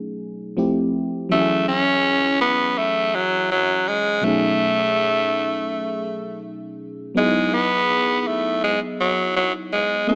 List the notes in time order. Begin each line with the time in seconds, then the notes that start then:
Already playing: B2 F#3 A3 C#4 D#4 G#4
0.57 F3 A3 C4 E4 G4
1.29 E3 F#3 A3 C#4 E4
1.34 G4
1.40 G#4
1.68 C#4
2.41 B3
2.78 A3
3.15 F#3
3.52 F#3
3.88 G#3
4.21 B2 F#3 A3 C#4
4.26 D#4 G#4
7.15 F#3 G#3 B3 D#4 E4
7.20 G#4
7.54 B3
8.21 B3
8.27 A3
8.64 G#3
9.00 F#3
9.37 F#3
9.73 G#3
10.07 A3 B3 C#4 E4